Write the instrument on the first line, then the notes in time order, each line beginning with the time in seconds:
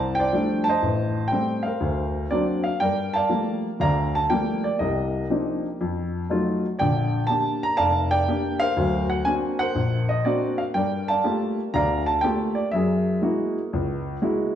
grand piano
Already playing: C2 C5 D5 A5
0.15 G5
0.19 C5 D5
0.33 F3 G3 A3 D4
0.64 A5
0.69 C5 D#5
0.82 A1
1.28 G3 G5
1.32 A3 C4
1.63 A#4 C5 F5
1.81 D2
2.31 F#3 A#3 C4 D4 D5
2.64 F5
2.80 G2 A#4 D5 G5
3.13 D5 F5 A5
3.29 F3 G3 A3 A#3
3.80 D2 D3 D5 F5 A#5
4.15 A5
4.30 F3 G3 A3 A#3 G5
4.64 D5
4.79 C2 C3 G4 A#4 D#5
5.30 F3 A#3 C4 D4 D#4
5.81 F2
6.29 F#3 A3 D#4 F4
6.79 A#1 D3 D5 G5
7.27 A#3 D4 G4 A5
7.63 A#5
7.77 F1 D5 F5 A5
8.11 D5 G5
8.28 A#3 D4 G4
8.60 A#4 C5 F5
8.77 D2 F#3
9.10 F#5
9.25 A#3 C4 D4 F#4 G#5
9.59 A#4 C5 F#5
9.75 A#1
10.09 D#5
10.25 A#3 C4 D4 F#4 D5
10.58 F5
10.74 G2 A#4 D5 G5
11.08 D5 F5 A5
11.24 A3 A#3 F4 G4
11.74 D2 D3 D5 F5 A#5
12.06 A5
12.21 A3 A#3 F4 G4 G5
12.55 D5
12.71 F#2 A#4 E5
12.76 G#4
13.22 G#3 A#3 E4 F#4
13.73 C#2
14.22 G#3 A#3 E4 F#4